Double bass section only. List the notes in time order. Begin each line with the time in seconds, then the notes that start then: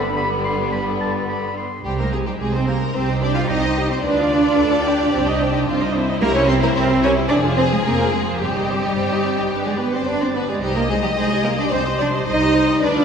Already playing: G1
1.85 C2
2.40 C2
2.95 C2
3.50 C2
4.04 D2
4.59 D2
5.14 C2
5.68 C2
6.21 C2
6.75 C2
7.29 F1
7.85 F1
8.40 G1
8.96 G1
9.52 G1
10.07 G1
10.62 C2
11.17 C2
11.73 C2
12.28 C2
12.82 D2